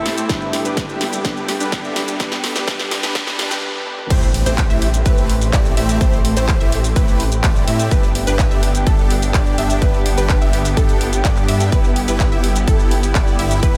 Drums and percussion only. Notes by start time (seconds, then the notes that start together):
0.06 snare, open hi-hat
0.18 closed hi-hat, shaker
0.29 kick, snare, closed hi-hat, shaker
0.41 shaker
0.53 snare, open hi-hat
0.65 closed hi-hat, shaker
0.77 kick, snare, closed hi-hat, shaker
0.89 shaker
1.01 snare, open hi-hat
1.13 closed hi-hat, shaker
1.25 kick, snare, closed hi-hat, shaker
1.37 shaker
1.48 snare, open hi-hat
1.60 open hi-hat, shaker
1.72 kick, snare, closed hi-hat, shaker
1.84 shaker
1.96 snare, open hi-hat
2.08 closed hi-hat, shaker
2.20 kick, snare, closed hi-hat, shaker
2.32 snare, shaker
2.44 snare, open hi-hat
2.56 snare, closed hi-hat, shaker
2.68 kick, snare, closed hi-hat, shaker
2.79 snare, shaker
2.91 snare, open hi-hat
3.03 snare, open hi-hat, shaker
3.15 kick, snare, closed hi-hat, shaker
3.27 snare, shaker
3.39 snare, open hi-hat
3.51 snare, closed hi-hat, shaker
3.87 high tom
3.99 mid tom
4.10 kick, closed hi-hat, crash, shaker
4.22 shaker
4.34 open hi-hat
4.46 closed hi-hat, shaker
4.58 kick, clap, closed hi-hat, shaker
4.70 shaker
4.82 open hi-hat
4.94 closed hi-hat, shaker
5.06 kick, closed hi-hat, shaker
5.18 shaker
5.30 open hi-hat
5.41 open hi-hat, shaker
5.53 kick, clap, closed hi-hat, shaker
5.65 shaker
5.77 open hi-hat
5.89 closed hi-hat, shaker
6.01 kick, closed hi-hat, shaker
6.13 shaker
6.25 open hi-hat
6.37 closed hi-hat, shaker
6.49 kick, clap, closed hi-hat, shaker
6.61 shaker
6.72 open hi-hat
6.84 open hi-hat, shaker
6.96 kick, closed hi-hat, shaker
7.08 shaker
7.20 open hi-hat
7.32 closed hi-hat, shaker
7.44 kick, clap, closed hi-hat, shaker
7.56 shaker
7.68 open hi-hat
7.79 closed hi-hat, shaker
7.91 kick, closed hi-hat, shaker
8.03 shaker
8.15 open hi-hat
8.27 closed hi-hat, shaker
8.39 kick, clap, closed hi-hat, shaker
8.51 shaker
8.63 open hi-hat
8.75 closed hi-hat, shaker
8.87 kick, closed hi-hat, shaker
8.99 shaker
9.10 open hi-hat
9.22 open hi-hat, shaker
9.34 kick, clap, closed hi-hat, shaker
9.46 shaker
9.58 open hi-hat
9.70 closed hi-hat, shaker
9.82 kick, closed hi-hat, shaker
9.94 shaker
10.06 open hi-hat
10.18 closed hi-hat, shaker
10.29 kick, clap, closed hi-hat, shaker
10.41 shaker
10.53 open hi-hat
10.65 open hi-hat, shaker
10.77 kick, closed hi-hat, shaker
10.89 closed hi-hat, shaker
11.01 open hi-hat
11.13 closed hi-hat, shaker
11.25 kick, clap, closed hi-hat, shaker
11.37 clap, shaker
11.48 open hi-hat
11.60 closed hi-hat, shaker
11.72 kick, closed hi-hat, shaker
11.84 shaker
11.96 open hi-hat
12.08 closed hi-hat, shaker
12.20 kick, clap, closed hi-hat, shaker
12.32 shaker
12.44 open hi-hat
12.56 closed hi-hat, shaker
12.68 kick, closed hi-hat, shaker
12.79 shaker
12.91 open hi-hat
13.03 open hi-hat, shaker
13.15 kick, clap, closed hi-hat, shaker
13.27 shaker
13.39 open hi-hat
13.51 closed hi-hat, shaker
13.63 kick, closed hi-hat, shaker